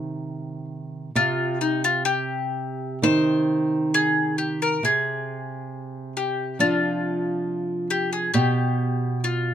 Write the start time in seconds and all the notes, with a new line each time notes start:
Already playing: C3 D#3 D#4 C5
1.15 C3 F4
1.61 D#4
1.84 F4
2.05 G4
3.02 D#3 D#4 C5
3.94 G#4
4.38 G4
4.62 A#4
4.83 C3 G#4
6.17 G4
6.59 F3 D4 F4
7.90 G4
8.13 G#4
8.34 B2 G4
9.24 F4